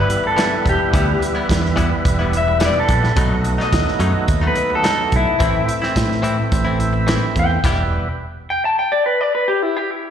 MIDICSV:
0, 0, Header, 1, 8, 480
1, 0, Start_track
1, 0, Key_signature, 1, "minor"
1, 0, Tempo, 558659
1, 804, Time_signature, 4, 2, 24, 8
1, 8681, End_track
2, 0, Start_track
2, 0, Title_t, "Clean electric guitar"
2, 0, Program_c, 0, 27
2, 0, Note_on_c, 0, 71, 74
2, 213, Note_off_c, 0, 71, 0
2, 231, Note_on_c, 0, 69, 86
2, 566, Note_off_c, 0, 69, 0
2, 595, Note_on_c, 0, 67, 80
2, 1045, Note_off_c, 0, 67, 0
2, 2038, Note_on_c, 0, 76, 88
2, 2254, Note_off_c, 0, 76, 0
2, 2280, Note_on_c, 0, 74, 69
2, 2380, Note_off_c, 0, 74, 0
2, 2403, Note_on_c, 0, 69, 72
2, 3082, Note_off_c, 0, 69, 0
2, 3111, Note_on_c, 0, 75, 74
2, 3796, Note_off_c, 0, 75, 0
2, 3843, Note_on_c, 0, 71, 81
2, 4057, Note_off_c, 0, 71, 0
2, 4084, Note_on_c, 0, 69, 99
2, 4412, Note_off_c, 0, 69, 0
2, 4433, Note_on_c, 0, 64, 82
2, 4884, Note_off_c, 0, 64, 0
2, 6352, Note_on_c, 0, 79, 78
2, 7037, Note_off_c, 0, 79, 0
2, 7305, Note_on_c, 0, 79, 100
2, 7412, Note_off_c, 0, 79, 0
2, 7435, Note_on_c, 0, 81, 90
2, 7535, Note_off_c, 0, 81, 0
2, 7552, Note_on_c, 0, 79, 78
2, 7656, Note_off_c, 0, 79, 0
2, 7662, Note_on_c, 0, 74, 88
2, 7769, Note_off_c, 0, 74, 0
2, 7784, Note_on_c, 0, 71, 74
2, 7911, Note_off_c, 0, 71, 0
2, 7911, Note_on_c, 0, 74, 95
2, 8014, Note_off_c, 0, 74, 0
2, 8032, Note_on_c, 0, 71, 81
2, 8136, Note_off_c, 0, 71, 0
2, 8144, Note_on_c, 0, 67, 84
2, 8269, Note_off_c, 0, 67, 0
2, 8269, Note_on_c, 0, 64, 78
2, 8390, Note_off_c, 0, 64, 0
2, 8390, Note_on_c, 0, 67, 77
2, 8513, Note_off_c, 0, 67, 0
2, 8513, Note_on_c, 0, 64, 106
2, 8681, Note_off_c, 0, 64, 0
2, 8681, End_track
3, 0, Start_track
3, 0, Title_t, "Tonewheel organ"
3, 0, Program_c, 1, 16
3, 0, Note_on_c, 1, 52, 65
3, 0, Note_on_c, 1, 55, 55
3, 0, Note_on_c, 1, 59, 55
3, 0, Note_on_c, 1, 64, 70
3, 2683, Note_off_c, 1, 52, 0
3, 2687, Note_off_c, 1, 55, 0
3, 2692, Note_off_c, 1, 59, 0
3, 2695, Note_off_c, 1, 64, 0
3, 2713, Note_on_c, 1, 54, 59
3, 2724, Note_on_c, 1, 57, 58
3, 2732, Note_on_c, 1, 59, 58
3, 2734, Note_on_c, 1, 63, 71
3, 4603, Note_off_c, 1, 54, 0
3, 4608, Note_off_c, 1, 57, 0
3, 4612, Note_off_c, 1, 59, 0
3, 4614, Note_off_c, 1, 63, 0
3, 4630, Note_on_c, 1, 52, 65
3, 4642, Note_on_c, 1, 57, 51
3, 4648, Note_on_c, 1, 60, 55
3, 4656, Note_on_c, 1, 64, 61
3, 6523, Note_off_c, 1, 52, 0
3, 6528, Note_off_c, 1, 57, 0
3, 6531, Note_off_c, 1, 60, 0
3, 6535, Note_off_c, 1, 64, 0
3, 6558, Note_on_c, 1, 52, 61
3, 6566, Note_on_c, 1, 55, 55
3, 6576, Note_on_c, 1, 59, 59
3, 6580, Note_on_c, 1, 64, 70
3, 6938, Note_off_c, 1, 52, 0
3, 6943, Note_off_c, 1, 55, 0
3, 6947, Note_off_c, 1, 59, 0
3, 6949, Note_off_c, 1, 64, 0
3, 8681, End_track
4, 0, Start_track
4, 0, Title_t, "Clean electric guitar"
4, 0, Program_c, 2, 27
4, 314, Note_on_c, 2, 52, 76
4, 323, Note_on_c, 2, 55, 67
4, 328, Note_on_c, 2, 59, 73
4, 335, Note_on_c, 2, 64, 75
4, 464, Note_off_c, 2, 52, 0
4, 469, Note_off_c, 2, 55, 0
4, 471, Note_off_c, 2, 59, 0
4, 475, Note_off_c, 2, 64, 0
4, 803, Note_on_c, 2, 52, 76
4, 806, Note_on_c, 2, 55, 75
4, 812, Note_on_c, 2, 59, 76
4, 817, Note_on_c, 2, 64, 79
4, 949, Note_off_c, 2, 52, 0
4, 950, Note_off_c, 2, 55, 0
4, 953, Note_off_c, 2, 59, 0
4, 956, Note_off_c, 2, 64, 0
4, 1158, Note_on_c, 2, 64, 50
4, 1167, Note_on_c, 2, 59, 59
4, 1178, Note_on_c, 2, 55, 40
4, 1266, Note_off_c, 2, 55, 0
4, 1269, Note_off_c, 2, 59, 0
4, 1272, Note_off_c, 2, 64, 0
4, 1512, Note_on_c, 2, 52, 83
4, 1520, Note_on_c, 2, 55, 90
4, 1520, Note_on_c, 2, 59, 97
4, 1529, Note_on_c, 2, 64, 87
4, 1630, Note_off_c, 2, 64, 0
4, 1637, Note_off_c, 2, 59, 0
4, 1639, Note_off_c, 2, 52, 0
4, 1639, Note_off_c, 2, 55, 0
4, 1882, Note_on_c, 2, 64, 44
4, 1896, Note_on_c, 2, 59, 42
4, 1905, Note_on_c, 2, 55, 41
4, 2002, Note_off_c, 2, 64, 0
4, 2003, Note_off_c, 2, 55, 0
4, 2007, Note_off_c, 2, 59, 0
4, 2241, Note_on_c, 2, 52, 68
4, 2243, Note_on_c, 2, 55, 77
4, 2247, Note_on_c, 2, 59, 73
4, 2256, Note_on_c, 2, 64, 80
4, 2387, Note_off_c, 2, 52, 0
4, 2388, Note_off_c, 2, 55, 0
4, 2390, Note_off_c, 2, 59, 0
4, 2395, Note_off_c, 2, 64, 0
4, 2719, Note_on_c, 2, 47, 75
4, 2725, Note_on_c, 2, 54, 74
4, 2730, Note_on_c, 2, 57, 72
4, 2733, Note_on_c, 2, 63, 81
4, 2866, Note_off_c, 2, 47, 0
4, 2869, Note_off_c, 2, 54, 0
4, 2872, Note_off_c, 2, 57, 0
4, 2873, Note_off_c, 2, 63, 0
4, 3078, Note_on_c, 2, 63, 53
4, 3091, Note_on_c, 2, 57, 46
4, 3097, Note_on_c, 2, 54, 41
4, 3188, Note_off_c, 2, 54, 0
4, 3195, Note_off_c, 2, 57, 0
4, 3196, Note_off_c, 2, 63, 0
4, 3433, Note_on_c, 2, 47, 73
4, 3437, Note_on_c, 2, 54, 81
4, 3442, Note_on_c, 2, 57, 72
4, 3446, Note_on_c, 2, 63, 85
4, 3545, Note_off_c, 2, 63, 0
4, 3551, Note_off_c, 2, 57, 0
4, 3555, Note_off_c, 2, 54, 0
4, 3559, Note_off_c, 2, 47, 0
4, 3792, Note_on_c, 2, 63, 48
4, 3803, Note_on_c, 2, 57, 45
4, 3811, Note_on_c, 2, 54, 39
4, 3915, Note_off_c, 2, 54, 0
4, 3917, Note_off_c, 2, 63, 0
4, 3918, Note_off_c, 2, 57, 0
4, 4154, Note_on_c, 2, 47, 68
4, 4161, Note_on_c, 2, 54, 73
4, 4163, Note_on_c, 2, 57, 81
4, 4171, Note_on_c, 2, 63, 77
4, 4303, Note_off_c, 2, 47, 0
4, 4307, Note_off_c, 2, 54, 0
4, 4308, Note_off_c, 2, 57, 0
4, 4312, Note_off_c, 2, 63, 0
4, 4633, Note_on_c, 2, 45, 76
4, 4640, Note_on_c, 2, 52, 78
4, 4644, Note_on_c, 2, 60, 70
4, 4651, Note_on_c, 2, 64, 79
4, 4783, Note_off_c, 2, 45, 0
4, 4786, Note_off_c, 2, 52, 0
4, 4788, Note_off_c, 2, 60, 0
4, 4792, Note_off_c, 2, 64, 0
4, 4999, Note_on_c, 2, 64, 63
4, 5013, Note_on_c, 2, 60, 56
4, 5023, Note_on_c, 2, 52, 46
4, 5112, Note_off_c, 2, 52, 0
4, 5120, Note_off_c, 2, 60, 0
4, 5120, Note_off_c, 2, 64, 0
4, 5346, Note_on_c, 2, 45, 76
4, 5353, Note_on_c, 2, 52, 80
4, 5357, Note_on_c, 2, 60, 90
4, 5360, Note_on_c, 2, 64, 86
4, 5466, Note_off_c, 2, 64, 0
4, 5473, Note_off_c, 2, 60, 0
4, 5476, Note_off_c, 2, 45, 0
4, 5477, Note_off_c, 2, 52, 0
4, 5710, Note_on_c, 2, 64, 56
4, 5721, Note_on_c, 2, 60, 45
4, 5734, Note_on_c, 2, 52, 42
4, 5831, Note_off_c, 2, 52, 0
4, 5832, Note_off_c, 2, 60, 0
4, 5832, Note_off_c, 2, 64, 0
4, 6073, Note_on_c, 2, 45, 72
4, 6082, Note_on_c, 2, 52, 88
4, 6086, Note_on_c, 2, 60, 87
4, 6090, Note_on_c, 2, 64, 95
4, 6223, Note_off_c, 2, 45, 0
4, 6228, Note_off_c, 2, 52, 0
4, 6230, Note_off_c, 2, 60, 0
4, 6231, Note_off_c, 2, 64, 0
4, 6570, Note_on_c, 2, 52, 71
4, 6572, Note_on_c, 2, 59, 70
4, 6580, Note_on_c, 2, 64, 86
4, 6586, Note_on_c, 2, 67, 79
4, 6712, Note_off_c, 2, 52, 0
4, 6713, Note_off_c, 2, 59, 0
4, 6717, Note_off_c, 2, 64, 0
4, 6720, Note_off_c, 2, 67, 0
4, 8681, End_track
5, 0, Start_track
5, 0, Title_t, "Fingered electric bass"
5, 0, Program_c, 3, 33
5, 564, Note_on_c, 3, 28, 78
5, 655, Note_off_c, 3, 28, 0
5, 803, Note_on_c, 3, 38, 91
5, 984, Note_off_c, 3, 38, 0
5, 1288, Note_on_c, 3, 40, 93
5, 1647, Note_off_c, 3, 40, 0
5, 1762, Note_on_c, 3, 28, 87
5, 2303, Note_off_c, 3, 28, 0
5, 2481, Note_on_c, 3, 34, 86
5, 2662, Note_off_c, 3, 34, 0
5, 2718, Note_on_c, 3, 35, 94
5, 3080, Note_off_c, 3, 35, 0
5, 3202, Note_on_c, 3, 39, 93
5, 3293, Note_off_c, 3, 39, 0
5, 3432, Note_on_c, 3, 42, 82
5, 3527, Note_off_c, 3, 42, 0
5, 3682, Note_on_c, 3, 39, 94
5, 3862, Note_off_c, 3, 39, 0
5, 4403, Note_on_c, 3, 35, 80
5, 4494, Note_off_c, 3, 35, 0
5, 4644, Note_on_c, 3, 33, 91
5, 4824, Note_off_c, 3, 33, 0
5, 5119, Note_on_c, 3, 45, 90
5, 5480, Note_off_c, 3, 45, 0
5, 5606, Note_on_c, 3, 33, 101
5, 6145, Note_off_c, 3, 33, 0
5, 6319, Note_on_c, 3, 40, 85
5, 6501, Note_off_c, 3, 40, 0
5, 6563, Note_on_c, 3, 28, 88
5, 6853, Note_off_c, 3, 28, 0
5, 8681, End_track
6, 0, Start_track
6, 0, Title_t, "Muted clean electric guitar strokes"
6, 79, Note_on_c, 9, 29, 39
6, 165, Note_off_c, 9, 29, 0
6, 206, Note_on_c, 9, 29, 43
6, 292, Note_off_c, 9, 29, 0
6, 556, Note_on_c, 9, 29, 36
6, 642, Note_off_c, 9, 29, 0
6, 678, Note_on_c, 9, 29, 43
6, 764, Note_off_c, 9, 29, 0
6, 1034, Note_on_c, 9, 29, 44
6, 1120, Note_off_c, 9, 29, 0
6, 1270, Note_on_c, 9, 29, 38
6, 1356, Note_off_c, 9, 29, 0
6, 1391, Note_on_c, 9, 29, 47
6, 1477, Note_off_c, 9, 29, 0
6, 1640, Note_on_c, 9, 29, 54
6, 1726, Note_off_c, 9, 29, 0
6, 2009, Note_on_c, 9, 29, 36
6, 2095, Note_off_c, 9, 29, 0
6, 2127, Note_on_c, 9, 29, 42
6, 2212, Note_off_c, 9, 29, 0
6, 2487, Note_on_c, 9, 29, 36
6, 2572, Note_off_c, 9, 29, 0
6, 2603, Note_on_c, 9, 29, 41
6, 2689, Note_off_c, 9, 29, 0
6, 2965, Note_on_c, 9, 29, 37
6, 3051, Note_off_c, 9, 29, 0
6, 3195, Note_on_c, 9, 29, 31
6, 3281, Note_off_c, 9, 29, 0
6, 3315, Note_on_c, 9, 29, 39
6, 3401, Note_off_c, 9, 29, 0
6, 3555, Note_on_c, 9, 29, 41
6, 3641, Note_off_c, 9, 29, 0
6, 3917, Note_on_c, 9, 29, 43
6, 4003, Note_off_c, 9, 29, 0
6, 4040, Note_on_c, 9, 29, 45
6, 4126, Note_off_c, 9, 29, 0
6, 4396, Note_on_c, 9, 29, 37
6, 4482, Note_off_c, 9, 29, 0
6, 4519, Note_on_c, 9, 29, 44
6, 4605, Note_off_c, 9, 29, 0
6, 4881, Note_on_c, 9, 29, 42
6, 4967, Note_off_c, 9, 29, 0
6, 5119, Note_on_c, 9, 29, 34
6, 5204, Note_off_c, 9, 29, 0
6, 5236, Note_on_c, 9, 29, 45
6, 5322, Note_off_c, 9, 29, 0
6, 5476, Note_on_c, 9, 29, 47
6, 5562, Note_off_c, 9, 29, 0
6, 5832, Note_on_c, 9, 29, 49
6, 5918, Note_off_c, 9, 29, 0
6, 5954, Note_on_c, 9, 29, 50
6, 6040, Note_off_c, 9, 29, 0
6, 6318, Note_on_c, 9, 29, 35
6, 6404, Note_off_c, 9, 29, 0
6, 6443, Note_on_c, 9, 29, 43
6, 6529, Note_off_c, 9, 29, 0
6, 8681, End_track
7, 0, Start_track
7, 0, Title_t, "Muted fingered electric bass strokes"
7, 3325, Note_on_c, 9, 29, 35
7, 3411, Note_off_c, 9, 29, 0
7, 3556, Note_on_c, 9, 29, 35
7, 3642, Note_off_c, 9, 29, 0
7, 8681, End_track
8, 0, Start_track
8, 0, Title_t, "Drums"
8, 85, Note_on_c, 9, 42, 57
8, 171, Note_off_c, 9, 42, 0
8, 324, Note_on_c, 9, 42, 77
8, 333, Note_on_c, 9, 38, 100
8, 410, Note_off_c, 9, 42, 0
8, 419, Note_off_c, 9, 38, 0
8, 563, Note_on_c, 9, 36, 76
8, 573, Note_on_c, 9, 42, 58
8, 649, Note_off_c, 9, 36, 0
8, 658, Note_off_c, 9, 42, 0
8, 804, Note_on_c, 9, 36, 102
8, 807, Note_on_c, 9, 42, 75
8, 889, Note_off_c, 9, 36, 0
8, 893, Note_off_c, 9, 42, 0
8, 1051, Note_on_c, 9, 42, 60
8, 1137, Note_off_c, 9, 42, 0
8, 1284, Note_on_c, 9, 36, 81
8, 1291, Note_on_c, 9, 42, 88
8, 1301, Note_on_c, 9, 38, 98
8, 1370, Note_off_c, 9, 36, 0
8, 1377, Note_off_c, 9, 42, 0
8, 1386, Note_off_c, 9, 38, 0
8, 1420, Note_on_c, 9, 38, 27
8, 1506, Note_off_c, 9, 38, 0
8, 1522, Note_on_c, 9, 36, 63
8, 1527, Note_on_c, 9, 42, 65
8, 1608, Note_off_c, 9, 36, 0
8, 1613, Note_off_c, 9, 42, 0
8, 1763, Note_on_c, 9, 36, 97
8, 1764, Note_on_c, 9, 42, 78
8, 1848, Note_off_c, 9, 36, 0
8, 1850, Note_off_c, 9, 42, 0
8, 2005, Note_on_c, 9, 42, 61
8, 2091, Note_off_c, 9, 42, 0
8, 2235, Note_on_c, 9, 42, 82
8, 2244, Note_on_c, 9, 38, 92
8, 2320, Note_off_c, 9, 42, 0
8, 2330, Note_off_c, 9, 38, 0
8, 2479, Note_on_c, 9, 42, 61
8, 2481, Note_on_c, 9, 36, 78
8, 2565, Note_off_c, 9, 42, 0
8, 2567, Note_off_c, 9, 36, 0
8, 2609, Note_on_c, 9, 38, 30
8, 2695, Note_off_c, 9, 38, 0
8, 2719, Note_on_c, 9, 42, 73
8, 2721, Note_on_c, 9, 36, 105
8, 2805, Note_off_c, 9, 42, 0
8, 2807, Note_off_c, 9, 36, 0
8, 2960, Note_on_c, 9, 42, 53
8, 3046, Note_off_c, 9, 42, 0
8, 3094, Note_on_c, 9, 38, 30
8, 3180, Note_off_c, 9, 38, 0
8, 3201, Note_on_c, 9, 36, 85
8, 3202, Note_on_c, 9, 42, 77
8, 3211, Note_on_c, 9, 38, 111
8, 3287, Note_off_c, 9, 36, 0
8, 3287, Note_off_c, 9, 42, 0
8, 3297, Note_off_c, 9, 38, 0
8, 3334, Note_on_c, 9, 38, 28
8, 3419, Note_off_c, 9, 38, 0
8, 3436, Note_on_c, 9, 42, 53
8, 3522, Note_off_c, 9, 42, 0
8, 3677, Note_on_c, 9, 42, 68
8, 3681, Note_on_c, 9, 36, 92
8, 3763, Note_off_c, 9, 42, 0
8, 3767, Note_off_c, 9, 36, 0
8, 3914, Note_on_c, 9, 42, 55
8, 3999, Note_off_c, 9, 42, 0
8, 4159, Note_on_c, 9, 42, 73
8, 4168, Note_on_c, 9, 38, 92
8, 4244, Note_off_c, 9, 42, 0
8, 4254, Note_off_c, 9, 38, 0
8, 4399, Note_on_c, 9, 42, 56
8, 4402, Note_on_c, 9, 36, 75
8, 4485, Note_off_c, 9, 42, 0
8, 4488, Note_off_c, 9, 36, 0
8, 4641, Note_on_c, 9, 42, 81
8, 4642, Note_on_c, 9, 36, 95
8, 4727, Note_off_c, 9, 36, 0
8, 4727, Note_off_c, 9, 42, 0
8, 4885, Note_on_c, 9, 42, 62
8, 4971, Note_off_c, 9, 42, 0
8, 5010, Note_on_c, 9, 38, 31
8, 5096, Note_off_c, 9, 38, 0
8, 5120, Note_on_c, 9, 36, 90
8, 5121, Note_on_c, 9, 42, 77
8, 5130, Note_on_c, 9, 38, 98
8, 5206, Note_off_c, 9, 36, 0
8, 5207, Note_off_c, 9, 42, 0
8, 5216, Note_off_c, 9, 38, 0
8, 5255, Note_on_c, 9, 38, 28
8, 5341, Note_off_c, 9, 38, 0
8, 5362, Note_on_c, 9, 42, 52
8, 5448, Note_off_c, 9, 42, 0
8, 5601, Note_on_c, 9, 42, 72
8, 5602, Note_on_c, 9, 36, 94
8, 5687, Note_off_c, 9, 36, 0
8, 5687, Note_off_c, 9, 42, 0
8, 5842, Note_on_c, 9, 42, 58
8, 5928, Note_off_c, 9, 42, 0
8, 6082, Note_on_c, 9, 42, 78
8, 6091, Note_on_c, 9, 38, 109
8, 6168, Note_off_c, 9, 42, 0
8, 6177, Note_off_c, 9, 38, 0
8, 6321, Note_on_c, 9, 36, 79
8, 6325, Note_on_c, 9, 42, 55
8, 6407, Note_off_c, 9, 36, 0
8, 6411, Note_off_c, 9, 42, 0
8, 6562, Note_on_c, 9, 36, 98
8, 6567, Note_on_c, 9, 42, 80
8, 6567, Note_on_c, 9, 49, 75
8, 6648, Note_off_c, 9, 36, 0
8, 6653, Note_off_c, 9, 42, 0
8, 6653, Note_off_c, 9, 49, 0
8, 8681, End_track
0, 0, End_of_file